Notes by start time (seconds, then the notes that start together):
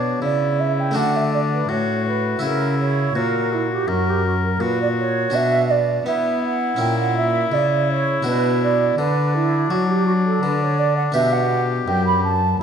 Already playing: B2 B3 D4 F#4 C#5
0.22 C#3 E4 D5
0.60 E5
0.79 G5
0.91 A3 D4 F#4
0.95 D3 D4 F#5
1.16 E5
1.33 D5
1.53 B4
1.69 A2 F#4 C#5
2.07 B4
2.39 C#3 E4 F#4
2.43 A#4
2.79 C#5
3.15 A#2 F#4 A#4
3.53 E4
3.72 G4
3.88 F#2 F#4 A#4
4.09 G4
4.26 F#4
4.45 A#4
4.60 A#2 F#4 B4
4.81 D5
4.99 C#5
5.30 B2 D4 F#4
5.34 E5
5.70 D5
6.06 B3 E4 E5
6.43 F#5
6.76 A#2 C#4 E4 G5
6.99 F#5
7.16 E5
7.52 C#3 D5
7.89 C#5
8.22 B2 D4 F#4 B4
8.62 D5
8.98 D3 D4 B4
9.34 E4
9.70 F#3 F#4
9.89 G4
10.06 F#4
10.25 A4
10.42 D3 B4
10.61 C#5
10.78 D5
10.97 F#5
11.12 B2 D4 G4 B4 E5
11.33 F#5
11.87 F#2 G5
12.06 B5
12.23 A5